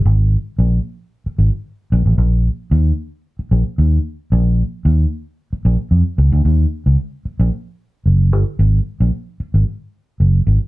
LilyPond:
\new Staff \with { instrumentName = "Fingered electric bass" } { \clef bass \time 4/4 \key bes \dorian \tempo 4 = 112 aes,,8. r16 bes,,8 r4 aes,,16 r8. bes,,16 a,,16 | bes,,8. r16 ees,8 r4 bes,,16 r16 ees,8 r8 | bes,,8. r16 ees,8 r4 bes,,16 r16 f,16 r16 des,16 d,16 | ees,8 r16 des,16 r8. bes,,16 r4 ges,,8 g,,16 r16 |
aes,,8 r16 bes,,16 r8. aes,,16 r4 ges,,8 aes,,16 r16 | }